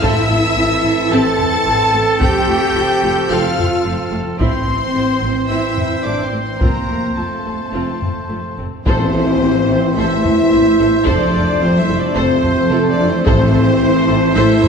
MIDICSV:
0, 0, Header, 1, 12, 480
1, 0, Start_track
1, 0, Key_signature, 0, "minor"
1, 0, Tempo, 547445
1, 16, Time_signature, 4, 2, 24, 8
1, 4816, Tempo, 562852
1, 7696, Tempo, 548446
1, 12782, End_track
2, 0, Start_track
2, 0, Title_t, "Violin section"
2, 0, Program_c, 0, 48
2, 24, Note_on_c, 0, 88, 120
2, 981, Note_off_c, 0, 88, 0
2, 993, Note_on_c, 0, 93, 122
2, 1925, Note_off_c, 0, 93, 0
2, 1937, Note_on_c, 0, 91, 110
2, 2875, Note_off_c, 0, 91, 0
2, 2903, Note_on_c, 0, 89, 97
2, 3617, Note_off_c, 0, 89, 0
2, 3860, Note_on_c, 0, 84, 96
2, 4785, Note_off_c, 0, 84, 0
2, 4816, Note_on_c, 0, 88, 69
2, 5276, Note_on_c, 0, 86, 62
2, 5280, Note_off_c, 0, 88, 0
2, 5442, Note_off_c, 0, 86, 0
2, 5456, Note_on_c, 0, 84, 60
2, 5607, Note_off_c, 0, 84, 0
2, 5617, Note_on_c, 0, 84, 55
2, 5766, Note_on_c, 0, 82, 66
2, 5771, Note_off_c, 0, 84, 0
2, 6248, Note_on_c, 0, 81, 50
2, 6254, Note_off_c, 0, 82, 0
2, 7454, Note_off_c, 0, 81, 0
2, 7696, Note_on_c, 0, 72, 84
2, 8624, Note_off_c, 0, 72, 0
2, 8658, Note_on_c, 0, 76, 88
2, 9597, Note_off_c, 0, 76, 0
2, 9624, Note_on_c, 0, 74, 77
2, 10100, Note_off_c, 0, 74, 0
2, 10125, Note_on_c, 0, 72, 78
2, 10270, Note_off_c, 0, 72, 0
2, 10280, Note_on_c, 0, 76, 73
2, 10425, Note_off_c, 0, 76, 0
2, 10435, Note_on_c, 0, 74, 68
2, 10585, Note_off_c, 0, 74, 0
2, 10585, Note_on_c, 0, 72, 76
2, 11062, Note_off_c, 0, 72, 0
2, 11066, Note_on_c, 0, 69, 80
2, 11223, Note_off_c, 0, 69, 0
2, 11230, Note_on_c, 0, 74, 79
2, 11385, Note_off_c, 0, 74, 0
2, 11392, Note_on_c, 0, 72, 62
2, 11540, Note_off_c, 0, 72, 0
2, 11550, Note_on_c, 0, 72, 99
2, 12486, Note_off_c, 0, 72, 0
2, 12510, Note_on_c, 0, 76, 106
2, 12782, Note_off_c, 0, 76, 0
2, 12782, End_track
3, 0, Start_track
3, 0, Title_t, "Violin section"
3, 0, Program_c, 1, 48
3, 14, Note_on_c, 1, 76, 102
3, 976, Note_off_c, 1, 76, 0
3, 976, Note_on_c, 1, 81, 105
3, 1932, Note_on_c, 1, 79, 101
3, 1936, Note_off_c, 1, 81, 0
3, 2872, Note_off_c, 1, 79, 0
3, 2890, Note_on_c, 1, 77, 76
3, 3611, Note_off_c, 1, 77, 0
3, 3850, Note_on_c, 1, 72, 77
3, 4780, Note_off_c, 1, 72, 0
3, 4808, Note_on_c, 1, 76, 69
3, 5276, Note_off_c, 1, 76, 0
3, 5293, Note_on_c, 1, 74, 59
3, 5450, Note_off_c, 1, 74, 0
3, 5458, Note_on_c, 1, 72, 54
3, 5609, Note_off_c, 1, 72, 0
3, 5619, Note_on_c, 1, 72, 55
3, 5773, Note_off_c, 1, 72, 0
3, 5774, Note_on_c, 1, 70, 59
3, 6258, Note_off_c, 1, 70, 0
3, 6259, Note_on_c, 1, 69, 41
3, 7436, Note_off_c, 1, 69, 0
3, 7690, Note_on_c, 1, 72, 84
3, 8621, Note_off_c, 1, 72, 0
3, 8661, Note_on_c, 1, 76, 83
3, 9618, Note_off_c, 1, 76, 0
3, 9627, Note_on_c, 1, 74, 84
3, 10092, Note_off_c, 1, 74, 0
3, 10110, Note_on_c, 1, 72, 86
3, 10245, Note_on_c, 1, 76, 78
3, 10263, Note_off_c, 1, 72, 0
3, 10410, Note_off_c, 1, 76, 0
3, 10415, Note_on_c, 1, 74, 73
3, 10575, Note_off_c, 1, 74, 0
3, 10582, Note_on_c, 1, 72, 93
3, 11052, Note_on_c, 1, 69, 85
3, 11060, Note_off_c, 1, 72, 0
3, 11208, Note_on_c, 1, 74, 84
3, 11216, Note_off_c, 1, 69, 0
3, 11370, Note_off_c, 1, 74, 0
3, 11377, Note_on_c, 1, 72, 77
3, 11534, Note_off_c, 1, 72, 0
3, 11544, Note_on_c, 1, 72, 99
3, 12480, Note_on_c, 1, 76, 104
3, 12483, Note_off_c, 1, 72, 0
3, 12782, Note_off_c, 1, 76, 0
3, 12782, End_track
4, 0, Start_track
4, 0, Title_t, "Trumpet"
4, 0, Program_c, 2, 56
4, 13, Note_on_c, 2, 69, 75
4, 3816, Note_off_c, 2, 69, 0
4, 3844, Note_on_c, 2, 72, 67
4, 7420, Note_off_c, 2, 72, 0
4, 7686, Note_on_c, 2, 72, 71
4, 11498, Note_off_c, 2, 72, 0
4, 11536, Note_on_c, 2, 72, 82
4, 12782, Note_off_c, 2, 72, 0
4, 12782, End_track
5, 0, Start_track
5, 0, Title_t, "French horn section"
5, 0, Program_c, 3, 60
5, 9, Note_on_c, 3, 64, 84
5, 974, Note_off_c, 3, 64, 0
5, 981, Note_on_c, 3, 69, 102
5, 1939, Note_off_c, 3, 69, 0
5, 1941, Note_on_c, 3, 67, 87
5, 2877, Note_off_c, 3, 67, 0
5, 2897, Note_on_c, 3, 65, 79
5, 3614, Note_off_c, 3, 65, 0
5, 3871, Note_on_c, 3, 60, 72
5, 4791, Note_off_c, 3, 60, 0
5, 4829, Note_on_c, 3, 64, 69
5, 5295, Note_off_c, 3, 64, 0
5, 5306, Note_on_c, 3, 62, 59
5, 5457, Note_off_c, 3, 62, 0
5, 5464, Note_on_c, 3, 60, 50
5, 5587, Note_off_c, 3, 60, 0
5, 5598, Note_on_c, 3, 60, 50
5, 5756, Note_on_c, 3, 58, 57
5, 5762, Note_off_c, 3, 60, 0
5, 6249, Note_off_c, 3, 58, 0
5, 6265, Note_on_c, 3, 57, 51
5, 7462, Note_off_c, 3, 57, 0
5, 7683, Note_on_c, 3, 60, 80
5, 8617, Note_off_c, 3, 60, 0
5, 8668, Note_on_c, 3, 64, 95
5, 9603, Note_off_c, 3, 64, 0
5, 9627, Note_on_c, 3, 62, 93
5, 10092, Note_off_c, 3, 62, 0
5, 10100, Note_on_c, 3, 60, 95
5, 10258, Note_off_c, 3, 60, 0
5, 10276, Note_on_c, 3, 64, 82
5, 10426, Note_off_c, 3, 64, 0
5, 10439, Note_on_c, 3, 62, 85
5, 10578, Note_on_c, 3, 60, 103
5, 10587, Note_off_c, 3, 62, 0
5, 11049, Note_off_c, 3, 60, 0
5, 11052, Note_on_c, 3, 57, 96
5, 11216, Note_off_c, 3, 57, 0
5, 11254, Note_on_c, 3, 62, 87
5, 11394, Note_on_c, 3, 60, 82
5, 11397, Note_off_c, 3, 62, 0
5, 11538, Note_off_c, 3, 60, 0
5, 11548, Note_on_c, 3, 60, 112
5, 12485, Note_off_c, 3, 60, 0
5, 12499, Note_on_c, 3, 64, 121
5, 12782, Note_off_c, 3, 64, 0
5, 12782, End_track
6, 0, Start_track
6, 0, Title_t, "Viola section"
6, 0, Program_c, 4, 48
6, 15, Note_on_c, 4, 69, 80
6, 18, Note_on_c, 4, 60, 73
6, 236, Note_off_c, 4, 69, 0
6, 238, Note_off_c, 4, 60, 0
6, 258, Note_on_c, 4, 57, 50
6, 263, Note_on_c, 4, 64, 61
6, 328, Note_off_c, 4, 57, 0
6, 333, Note_off_c, 4, 64, 0
6, 501, Note_on_c, 4, 52, 47
6, 502, Note_on_c, 4, 60, 60
6, 571, Note_off_c, 4, 52, 0
6, 572, Note_off_c, 4, 60, 0
6, 745, Note_on_c, 4, 57, 50
6, 746, Note_on_c, 4, 64, 50
6, 815, Note_off_c, 4, 57, 0
6, 816, Note_off_c, 4, 64, 0
6, 976, Note_on_c, 4, 60, 77
6, 979, Note_on_c, 4, 69, 60
6, 1201, Note_off_c, 4, 60, 0
6, 1202, Note_off_c, 4, 69, 0
6, 1447, Note_on_c, 4, 60, 54
6, 1449, Note_on_c, 4, 52, 53
6, 1517, Note_off_c, 4, 60, 0
6, 1519, Note_off_c, 4, 52, 0
6, 1698, Note_on_c, 4, 57, 56
6, 1704, Note_on_c, 4, 64, 53
6, 1768, Note_off_c, 4, 57, 0
6, 1774, Note_off_c, 4, 64, 0
6, 1929, Note_on_c, 4, 60, 70
6, 1936, Note_on_c, 4, 69, 60
6, 2155, Note_off_c, 4, 60, 0
6, 2159, Note_off_c, 4, 69, 0
6, 2175, Note_on_c, 4, 65, 44
6, 2178, Note_on_c, 4, 57, 47
6, 2245, Note_off_c, 4, 65, 0
6, 2248, Note_off_c, 4, 57, 0
6, 2414, Note_on_c, 4, 60, 48
6, 2417, Note_on_c, 4, 53, 52
6, 2484, Note_off_c, 4, 60, 0
6, 2487, Note_off_c, 4, 53, 0
6, 2656, Note_on_c, 4, 65, 47
6, 2658, Note_on_c, 4, 57, 51
6, 2726, Note_off_c, 4, 65, 0
6, 2728, Note_off_c, 4, 57, 0
6, 2895, Note_on_c, 4, 60, 64
6, 2898, Note_on_c, 4, 69, 61
6, 3117, Note_off_c, 4, 60, 0
6, 3118, Note_off_c, 4, 69, 0
6, 3366, Note_on_c, 4, 60, 50
6, 3370, Note_on_c, 4, 53, 49
6, 3436, Note_off_c, 4, 60, 0
6, 3440, Note_off_c, 4, 53, 0
6, 3604, Note_on_c, 4, 57, 55
6, 3606, Note_on_c, 4, 65, 49
6, 3675, Note_off_c, 4, 57, 0
6, 3676, Note_off_c, 4, 65, 0
6, 3853, Note_on_c, 4, 64, 64
6, 3856, Note_on_c, 4, 60, 63
6, 4076, Note_off_c, 4, 64, 0
6, 4078, Note_off_c, 4, 60, 0
6, 4097, Note_on_c, 4, 60, 39
6, 4098, Note_on_c, 4, 57, 43
6, 4167, Note_off_c, 4, 60, 0
6, 4168, Note_off_c, 4, 57, 0
6, 4335, Note_on_c, 4, 57, 42
6, 4336, Note_on_c, 4, 52, 44
6, 4405, Note_off_c, 4, 57, 0
6, 4407, Note_off_c, 4, 52, 0
6, 4574, Note_on_c, 4, 57, 41
6, 4575, Note_on_c, 4, 60, 34
6, 4644, Note_off_c, 4, 57, 0
6, 4646, Note_off_c, 4, 60, 0
6, 4817, Note_on_c, 4, 60, 45
6, 4817, Note_on_c, 4, 64, 46
6, 5036, Note_off_c, 4, 60, 0
6, 5036, Note_off_c, 4, 64, 0
6, 5292, Note_on_c, 4, 57, 39
6, 5299, Note_on_c, 4, 52, 49
6, 5361, Note_off_c, 4, 57, 0
6, 5368, Note_off_c, 4, 52, 0
6, 5522, Note_on_c, 4, 60, 43
6, 5525, Note_on_c, 4, 57, 43
6, 5591, Note_off_c, 4, 60, 0
6, 5593, Note_off_c, 4, 57, 0
6, 5759, Note_on_c, 4, 60, 47
6, 5766, Note_on_c, 4, 65, 45
6, 5990, Note_off_c, 4, 60, 0
6, 5995, Note_off_c, 4, 65, 0
6, 6007, Note_on_c, 4, 57, 36
6, 6007, Note_on_c, 4, 60, 38
6, 6075, Note_off_c, 4, 60, 0
6, 6076, Note_off_c, 4, 57, 0
6, 6245, Note_on_c, 4, 57, 41
6, 6247, Note_on_c, 4, 53, 36
6, 6313, Note_off_c, 4, 57, 0
6, 6315, Note_off_c, 4, 53, 0
6, 6491, Note_on_c, 4, 60, 33
6, 6492, Note_on_c, 4, 57, 32
6, 6559, Note_off_c, 4, 60, 0
6, 6561, Note_off_c, 4, 57, 0
6, 6718, Note_on_c, 4, 60, 51
6, 6720, Note_on_c, 4, 65, 49
6, 6950, Note_off_c, 4, 60, 0
6, 6951, Note_off_c, 4, 65, 0
6, 7200, Note_on_c, 4, 53, 38
6, 7205, Note_on_c, 4, 57, 46
6, 7269, Note_off_c, 4, 53, 0
6, 7273, Note_off_c, 4, 57, 0
6, 7449, Note_on_c, 4, 60, 36
6, 7455, Note_on_c, 4, 57, 39
6, 7517, Note_off_c, 4, 60, 0
6, 7523, Note_off_c, 4, 57, 0
6, 7692, Note_on_c, 4, 69, 73
6, 7694, Note_on_c, 4, 72, 69
6, 7920, Note_off_c, 4, 69, 0
6, 7921, Note_off_c, 4, 72, 0
6, 7949, Note_on_c, 4, 69, 44
6, 7958, Note_on_c, 4, 64, 54
6, 8019, Note_off_c, 4, 69, 0
6, 8028, Note_off_c, 4, 64, 0
6, 8184, Note_on_c, 4, 60, 58
6, 8187, Note_on_c, 4, 64, 54
6, 8254, Note_off_c, 4, 60, 0
6, 8257, Note_off_c, 4, 64, 0
6, 8432, Note_on_c, 4, 69, 42
6, 8433, Note_on_c, 4, 64, 48
6, 8502, Note_off_c, 4, 69, 0
6, 8503, Note_off_c, 4, 64, 0
6, 8659, Note_on_c, 4, 69, 61
6, 8664, Note_on_c, 4, 72, 54
6, 8882, Note_off_c, 4, 69, 0
6, 8884, Note_off_c, 4, 72, 0
6, 9141, Note_on_c, 4, 64, 54
6, 9143, Note_on_c, 4, 60, 53
6, 9211, Note_off_c, 4, 64, 0
6, 9213, Note_off_c, 4, 60, 0
6, 9383, Note_on_c, 4, 69, 55
6, 9386, Note_on_c, 4, 64, 58
6, 9453, Note_off_c, 4, 69, 0
6, 9456, Note_off_c, 4, 64, 0
6, 9610, Note_on_c, 4, 72, 78
6, 9615, Note_on_c, 4, 69, 67
6, 9836, Note_off_c, 4, 72, 0
6, 9839, Note_off_c, 4, 69, 0
6, 9856, Note_on_c, 4, 65, 51
6, 9858, Note_on_c, 4, 69, 54
6, 9926, Note_off_c, 4, 65, 0
6, 9928, Note_off_c, 4, 69, 0
6, 10090, Note_on_c, 4, 65, 56
6, 10094, Note_on_c, 4, 60, 48
6, 10160, Note_off_c, 4, 65, 0
6, 10164, Note_off_c, 4, 60, 0
6, 10329, Note_on_c, 4, 65, 44
6, 10331, Note_on_c, 4, 69, 48
6, 10399, Note_off_c, 4, 65, 0
6, 10401, Note_off_c, 4, 69, 0
6, 10576, Note_on_c, 4, 69, 72
6, 10576, Note_on_c, 4, 72, 75
6, 10799, Note_off_c, 4, 69, 0
6, 10799, Note_off_c, 4, 72, 0
6, 11048, Note_on_c, 4, 65, 65
6, 11050, Note_on_c, 4, 60, 69
6, 11118, Note_off_c, 4, 65, 0
6, 11120, Note_off_c, 4, 60, 0
6, 11299, Note_on_c, 4, 69, 56
6, 11303, Note_on_c, 4, 65, 59
6, 11369, Note_off_c, 4, 69, 0
6, 11373, Note_off_c, 4, 65, 0
6, 11535, Note_on_c, 4, 69, 83
6, 11539, Note_on_c, 4, 72, 76
6, 11758, Note_off_c, 4, 69, 0
6, 11762, Note_off_c, 4, 72, 0
6, 11767, Note_on_c, 4, 64, 58
6, 11768, Note_on_c, 4, 69, 65
6, 11837, Note_off_c, 4, 64, 0
6, 11838, Note_off_c, 4, 69, 0
6, 12014, Note_on_c, 4, 60, 55
6, 12020, Note_on_c, 4, 64, 60
6, 12084, Note_off_c, 4, 60, 0
6, 12090, Note_off_c, 4, 64, 0
6, 12256, Note_on_c, 4, 64, 61
6, 12257, Note_on_c, 4, 69, 56
6, 12326, Note_off_c, 4, 64, 0
6, 12327, Note_off_c, 4, 69, 0
6, 12500, Note_on_c, 4, 72, 86
6, 12501, Note_on_c, 4, 69, 78
6, 12722, Note_off_c, 4, 72, 0
6, 12723, Note_off_c, 4, 69, 0
6, 12782, End_track
7, 0, Start_track
7, 0, Title_t, "Cello section"
7, 0, Program_c, 5, 48
7, 13, Note_on_c, 5, 64, 92
7, 956, Note_off_c, 5, 64, 0
7, 977, Note_on_c, 5, 69, 89
7, 1933, Note_on_c, 5, 67, 97
7, 1936, Note_off_c, 5, 69, 0
7, 2872, Note_off_c, 5, 67, 0
7, 2896, Note_on_c, 5, 65, 79
7, 3614, Note_off_c, 5, 65, 0
7, 3863, Note_on_c, 5, 60, 80
7, 4787, Note_off_c, 5, 60, 0
7, 4810, Note_on_c, 5, 64, 68
7, 5286, Note_off_c, 5, 64, 0
7, 5286, Note_on_c, 5, 62, 54
7, 5444, Note_off_c, 5, 62, 0
7, 5448, Note_on_c, 5, 60, 56
7, 5595, Note_off_c, 5, 60, 0
7, 5605, Note_on_c, 5, 60, 53
7, 5765, Note_off_c, 5, 60, 0
7, 5766, Note_on_c, 5, 58, 58
7, 6248, Note_on_c, 5, 57, 44
7, 6254, Note_off_c, 5, 58, 0
7, 7454, Note_off_c, 5, 57, 0
7, 7689, Note_on_c, 5, 52, 88
7, 8620, Note_off_c, 5, 52, 0
7, 8660, Note_on_c, 5, 57, 77
7, 9618, Note_off_c, 5, 57, 0
7, 9619, Note_on_c, 5, 53, 77
7, 10085, Note_off_c, 5, 53, 0
7, 10095, Note_on_c, 5, 53, 85
7, 10252, Note_off_c, 5, 53, 0
7, 10256, Note_on_c, 5, 55, 74
7, 10416, Note_off_c, 5, 55, 0
7, 10421, Note_on_c, 5, 53, 58
7, 10567, Note_off_c, 5, 53, 0
7, 10578, Note_on_c, 5, 53, 77
7, 11049, Note_off_c, 5, 53, 0
7, 11051, Note_on_c, 5, 48, 81
7, 11215, Note_off_c, 5, 48, 0
7, 11220, Note_on_c, 5, 53, 83
7, 11380, Note_off_c, 5, 53, 0
7, 11382, Note_on_c, 5, 52, 71
7, 11529, Note_off_c, 5, 52, 0
7, 11540, Note_on_c, 5, 52, 100
7, 12480, Note_off_c, 5, 52, 0
7, 12502, Note_on_c, 5, 57, 100
7, 12782, Note_off_c, 5, 57, 0
7, 12782, End_track
8, 0, Start_track
8, 0, Title_t, "Trombone section"
8, 0, Program_c, 6, 61
8, 14, Note_on_c, 6, 60, 77
8, 20, Note_on_c, 6, 52, 79
8, 1903, Note_off_c, 6, 52, 0
8, 1921, Note_on_c, 6, 53, 72
8, 3810, Note_off_c, 6, 53, 0
8, 3817, Note_off_c, 6, 60, 0
8, 3857, Note_on_c, 6, 52, 56
8, 3859, Note_on_c, 6, 60, 59
8, 5739, Note_off_c, 6, 52, 0
8, 5761, Note_on_c, 6, 53, 47
8, 7420, Note_off_c, 6, 53, 0
8, 7427, Note_off_c, 6, 60, 0
8, 7686, Note_on_c, 6, 60, 69
8, 7691, Note_on_c, 6, 52, 67
8, 9577, Note_off_c, 6, 60, 0
8, 9579, Note_off_c, 6, 52, 0
8, 9641, Note_on_c, 6, 48, 68
8, 9645, Note_on_c, 6, 57, 73
8, 12499, Note_on_c, 6, 52, 85
8, 12511, Note_off_c, 6, 48, 0
8, 12782, Note_off_c, 6, 52, 0
8, 12782, Note_off_c, 6, 57, 0
8, 12782, End_track
9, 0, Start_track
9, 0, Title_t, "Timpani"
9, 0, Program_c, 7, 47
9, 11548, Note_on_c, 7, 45, 102
9, 12229, Note_off_c, 7, 45, 0
9, 12782, End_track
10, 0, Start_track
10, 0, Title_t, "Double bass section"
10, 0, Program_c, 8, 48
10, 15, Note_on_c, 8, 33, 81
10, 85, Note_off_c, 8, 33, 0
10, 258, Note_on_c, 8, 33, 52
10, 329, Note_off_c, 8, 33, 0
10, 489, Note_on_c, 8, 33, 50
10, 559, Note_off_c, 8, 33, 0
10, 736, Note_on_c, 8, 33, 59
10, 806, Note_off_c, 8, 33, 0
10, 980, Note_on_c, 8, 33, 83
10, 1050, Note_off_c, 8, 33, 0
10, 1459, Note_on_c, 8, 33, 57
10, 1529, Note_off_c, 8, 33, 0
10, 1697, Note_on_c, 8, 33, 52
10, 1767, Note_off_c, 8, 33, 0
10, 1938, Note_on_c, 8, 29, 76
10, 2009, Note_off_c, 8, 29, 0
10, 2182, Note_on_c, 8, 29, 51
10, 2252, Note_off_c, 8, 29, 0
10, 2414, Note_on_c, 8, 29, 53
10, 2485, Note_off_c, 8, 29, 0
10, 2662, Note_on_c, 8, 29, 54
10, 2732, Note_off_c, 8, 29, 0
10, 2900, Note_on_c, 8, 29, 79
10, 2970, Note_off_c, 8, 29, 0
10, 3383, Note_on_c, 8, 29, 53
10, 3453, Note_off_c, 8, 29, 0
10, 3620, Note_on_c, 8, 29, 51
10, 3690, Note_off_c, 8, 29, 0
10, 3856, Note_on_c, 8, 33, 69
10, 3927, Note_off_c, 8, 33, 0
10, 4098, Note_on_c, 8, 33, 47
10, 4168, Note_off_c, 8, 33, 0
10, 4333, Note_on_c, 8, 33, 40
10, 4403, Note_off_c, 8, 33, 0
10, 4577, Note_on_c, 8, 33, 48
10, 4647, Note_off_c, 8, 33, 0
10, 4819, Note_on_c, 8, 33, 57
10, 4887, Note_off_c, 8, 33, 0
10, 5293, Note_on_c, 8, 33, 45
10, 5362, Note_off_c, 8, 33, 0
10, 5531, Note_on_c, 8, 33, 39
10, 5599, Note_off_c, 8, 33, 0
10, 5783, Note_on_c, 8, 29, 58
10, 5851, Note_off_c, 8, 29, 0
10, 6015, Note_on_c, 8, 29, 37
10, 6084, Note_off_c, 8, 29, 0
10, 6259, Note_on_c, 8, 29, 33
10, 6327, Note_off_c, 8, 29, 0
10, 6491, Note_on_c, 8, 29, 41
10, 6559, Note_off_c, 8, 29, 0
10, 6733, Note_on_c, 8, 29, 55
10, 6801, Note_off_c, 8, 29, 0
10, 7219, Note_on_c, 8, 29, 42
10, 7287, Note_off_c, 8, 29, 0
10, 7456, Note_on_c, 8, 29, 38
10, 7524, Note_off_c, 8, 29, 0
10, 7696, Note_on_c, 8, 33, 75
10, 7766, Note_off_c, 8, 33, 0
10, 7944, Note_on_c, 8, 33, 43
10, 8014, Note_off_c, 8, 33, 0
10, 8181, Note_on_c, 8, 33, 47
10, 8251, Note_off_c, 8, 33, 0
10, 8428, Note_on_c, 8, 33, 53
10, 8498, Note_off_c, 8, 33, 0
10, 8668, Note_on_c, 8, 33, 74
10, 8738, Note_off_c, 8, 33, 0
10, 9149, Note_on_c, 8, 33, 55
10, 9219, Note_off_c, 8, 33, 0
10, 9389, Note_on_c, 8, 33, 55
10, 9459, Note_off_c, 8, 33, 0
10, 9626, Note_on_c, 8, 29, 86
10, 9696, Note_off_c, 8, 29, 0
10, 9875, Note_on_c, 8, 29, 56
10, 9945, Note_off_c, 8, 29, 0
10, 10119, Note_on_c, 8, 29, 51
10, 10189, Note_off_c, 8, 29, 0
10, 10347, Note_on_c, 8, 29, 58
10, 10417, Note_off_c, 8, 29, 0
10, 10579, Note_on_c, 8, 29, 90
10, 10649, Note_off_c, 8, 29, 0
10, 11064, Note_on_c, 8, 29, 58
10, 11134, Note_off_c, 8, 29, 0
10, 11311, Note_on_c, 8, 29, 64
10, 11381, Note_off_c, 8, 29, 0
10, 11552, Note_on_c, 8, 33, 98
10, 11622, Note_off_c, 8, 33, 0
10, 11784, Note_on_c, 8, 33, 63
10, 11854, Note_off_c, 8, 33, 0
10, 12026, Note_on_c, 8, 33, 56
10, 12096, Note_off_c, 8, 33, 0
10, 12264, Note_on_c, 8, 33, 69
10, 12334, Note_off_c, 8, 33, 0
10, 12502, Note_on_c, 8, 33, 92
10, 12572, Note_off_c, 8, 33, 0
10, 12782, End_track
11, 0, Start_track
11, 0, Title_t, "Taiko and cinematic ensemble drums"
11, 18, Note_on_c, 9, 41, 80
11, 105, Note_off_c, 9, 41, 0
11, 1218, Note_on_c, 9, 43, 47
11, 1306, Note_off_c, 9, 43, 0
11, 1938, Note_on_c, 9, 41, 82
11, 2026, Note_off_c, 9, 41, 0
11, 3141, Note_on_c, 9, 43, 47
11, 3228, Note_off_c, 9, 43, 0
11, 3861, Note_on_c, 9, 41, 80
11, 3948, Note_off_c, 9, 41, 0
11, 5054, Note_on_c, 9, 43, 42
11, 5139, Note_off_c, 9, 43, 0
11, 5772, Note_on_c, 9, 41, 81
11, 5857, Note_off_c, 9, 41, 0
11, 6973, Note_on_c, 9, 43, 41
11, 7058, Note_off_c, 9, 43, 0
11, 7690, Note_on_c, 9, 41, 85
11, 7777, Note_off_c, 9, 41, 0
11, 8901, Note_on_c, 9, 43, 46
11, 8988, Note_off_c, 9, 43, 0
11, 9617, Note_on_c, 9, 41, 79
11, 9705, Note_off_c, 9, 41, 0
11, 10820, Note_on_c, 9, 43, 49
11, 10908, Note_off_c, 9, 43, 0
11, 11545, Note_on_c, 9, 41, 88
11, 11632, Note_off_c, 9, 41, 0
11, 12744, Note_on_c, 9, 43, 56
11, 12782, Note_off_c, 9, 43, 0
11, 12782, End_track
12, 0, Start_track
12, 0, Title_t, "Tam-tam"
12, 7690, Note_on_c, 9, 52, 58
12, 7777, Note_off_c, 9, 52, 0
12, 12782, End_track
0, 0, End_of_file